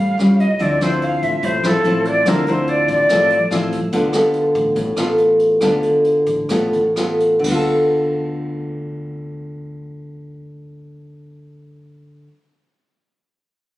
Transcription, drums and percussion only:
0.19 cross-stick soft
0.19 closed hi-hat soft
0.40 closed hi-hat soft
0.60 kick medium
0.60 closed hi-hat medium
0.81 cross-stick medium
0.81 closed hi-hat soft
1.02 closed hi-hat soft
1.22 kick soft
1.22 closed hi-hat soft
1.43 kick medium
1.43 closed hi-hat medium
1.64 cross-stick medium
1.64 closed hi-hat soft
1.84 closed hi-hat soft
2.05 closed hi-hat soft
2.26 kick medium
2.26 cross-stick medium
2.26 closed hi-hat medium
2.47 closed hi-hat soft
2.67 closed hi-hat soft
2.88 kick medium
2.88 closed hi-hat soft
3.09 kick medium
3.09 cross-stick medium
3.09 closed hi-hat medium
3.30 closed hi-hat soft
3.51 cross-stick soft
3.51 closed hi-hat soft
3.72 kick soft
3.72 closed hi-hat soft
3.92 kick medium
3.92 closed hi-hat medium
4.13 cross-stick medium
4.13 closed hi-hat soft
4.34 closed hi-hat soft
4.55 closed hi-hat soft
4.76 kick soft
4.76 closed hi-hat soft
4.97 cross-stick medium
4.97 closed hi-hat soft
5.18 closed hi-hat soft
5.39 closed hi-hat soft
5.61 kick medium
5.61 cross-stick medium
5.61 closed hi-hat soft
5.83 closed hi-hat soft
6.04 closed hi-hat soft
6.27 closed hi-hat soft
6.49 kick soft
6.49 cross-stick soft
6.49 closed hi-hat medium
6.73 closed hi-hat soft
6.96 cross-stick soft
6.96 closed hi-hat soft
7.20 closed hi-hat soft
7.44 kick medium
7.44 crash medium

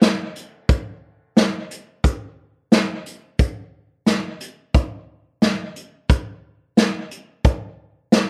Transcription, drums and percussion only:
0.02 snare loud
0.02 closed hi-hat medium
0.36 closed hi-hat medium
0.69 kick loud
0.69 closed hi-hat medium
1.37 snare loud
1.37 closed hi-hat medium
1.71 closed hi-hat medium
2.04 kick medium
2.04 closed hi-hat medium
2.72 snare loud
2.72 closed hi-hat medium
3.06 closed hi-hat medium
3.39 kick loud
3.39 closed hi-hat medium
4.06 snare loud
4.06 closed hi-hat medium
4.40 closed hi-hat medium
4.74 kick loud
4.74 closed hi-hat medium
5.42 snare loud
5.42 closed hi-hat medium
5.76 closed hi-hat medium
6.10 kick loud
6.10 closed hi-hat medium
6.77 snare loud
6.77 closed hi-hat medium
7.11 closed hi-hat medium
7.44 kick loud
7.44 closed hi-hat medium
8.12 snare loud
8.12 closed hi-hat medium

